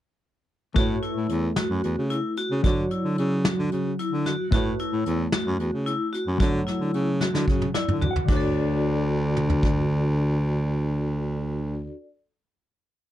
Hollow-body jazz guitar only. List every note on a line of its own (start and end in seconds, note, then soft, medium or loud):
0.74 2.60 A3 medium
0.74 2.60 E4 medium
0.74 2.61 B4 medium
0.74 2.61 C#5 medium
2.63 4.48 F#3 medium
2.63 4.49 F#4 medium
2.63 4.50 C#5 medium
2.63 4.48 D5 medium
4.51 6.36 A3 medium
4.51 6.36 E4 medium
4.51 6.37 B4 medium
4.51 6.37 C#5 medium
6.38 8.23 F#3 medium
6.38 8.24 A3 medium
6.38 8.25 F#4 medium
6.38 8.25 C#5 medium
7.74 8.08 D5 medium
8.11 8.27 F#5 medium
8.25 11.86 D3 medium
8.25 11.89 D4 medium
8.30 11.91 F#4 medium
8.30 11.94 C#5 medium